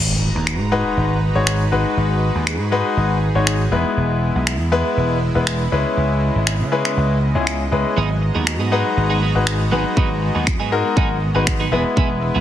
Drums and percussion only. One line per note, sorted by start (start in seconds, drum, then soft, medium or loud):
0.47 finger snap loud
1.47 finger snap loud
2.47 finger snap loud
3.47 finger snap loud
4.47 finger snap loud
5.47 finger snap loud
6.47 finger snap loud
6.85 finger snap medium
7.47 finger snap loud
8.47 finger snap loud
9.47 finger snap loud
9.97 kick loud
10.47 finger snap loud
10.47 kick loud
10.97 kick loud
11.47 finger snap loud
11.47 kick loud
11.97 kick loud